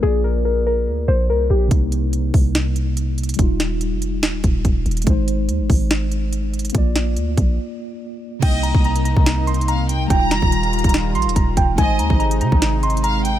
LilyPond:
<<
  \new Staff \with { instrumentName = "Synth keys" } { \time 4/4 \key c \minor \tempo 4 = 143 aes'8 bes'8 bes'8 bes'4 c''8 bes'8 g'8 | r1 | r1 | r1 |
r1 | g''8 bes''8 bes''8 bes''4 c'''8 bes''8 r8 | g''8 bes''8 bes''8 bes''4 c'''8 bes''8 g''8 | aes''8 bes''8 bes''8 bes''4 c'''8 bes''8 r8 | }
  \new Staff \with { instrumentName = "Violin section" } { \time 4/4 \key c \minor r1 | r1 | r1 | r1 |
r1 | ees''4 r2 f''8 g''8 | bes''2. r4 | ees''4 r2 f''8 g''8 | }
  \new Staff \with { instrumentName = "Tine electric piano" } { \time 4/4 \key c \minor <bes f' d''>1 | <c bes ees'>1 | <g ees' f'>1 | <aes ees' c''>1 |
<bes f' d''>1 | <c bes ees'>1 | <g ees' f'>1 | <aes ees' c''>1 | }
  \new Staff \with { instrumentName = "Analog synth pad" } { \clef bass \time 4/4 \key c \minor r1 | r1 | r1 | r1 |
r1 | <c bes ees'>1 | <ees g f'>1 | <c aes ees'>1 | }
  \new Staff \with { instrumentName = "808-style bass" } { \clef bass \time 4/4 \key c \minor bes,,2 d,8 bes,,8 c,8 bes,,8 | c,4. c,2~ c,8 | ees,,4~ ees,,16 f,,8~ f,,32 ees,,8~ ees,,32 ees,,8 ees,,8 ees,,8 | aes,,4 ees,16 aes,,16 aes,,2~ aes,,8 |
bes,,4 d,8 bes,,8 r2 | c,8. c,4 c,2~ c,16 | ees,,8 f,,16 ees,,4 ees,,8. bes,,16 ees,,16 ees,,8 ees,,8 | aes,,8 ees,16 aes,,8. c16 aes,,2~ aes,,16 | }
  \new DrumStaff \with { instrumentName = "Drums" } \drummode { \time 4/4 r4 r4 r4 r4 | <hh bd>8 hh8 hh8 <hho bd>8 <hh sn>8 hh8 hh8 hh32 hh32 hh32 hh32 | <hh bd>8 <hh sn>8 hh8 hh8 <hh sn>8 <hh bd>8 <hh bd>8 hh32 hh32 hh32 hh32 | <hh bd>8 hh8 hh8 <hho bd>8 <hh sn>8 hh8 hh8 hh32 hh32 hh32 hh32 |
<hh bd>8 <hh sn>8 hh8 <hh bd>8 r4 r4 | <cymc hh bd>8 hh16 bd16 hh16 hh16 hh16 bd16 \tuplet 3/2 { <hh sn>16 r16 r16 hh16 hh16 hh16 } hh8 hh8 | <hh bd>8 <hh sn>16 bd16 hh16 hh16 hh32 hh32 <hh bd>32 hh32 \tuplet 3/2 { <hh sn>16 r16 r16 hh16 hh16 hh16 } <hh bd>8 <hh bd>8 | <hh bd>8 hh16 bd16 hh16 hh16 hh16 bd16 \tuplet 3/2 { <hh sn>16 r16 r16 hh16 hh16 hh16 } hh8 hh8 | }
>>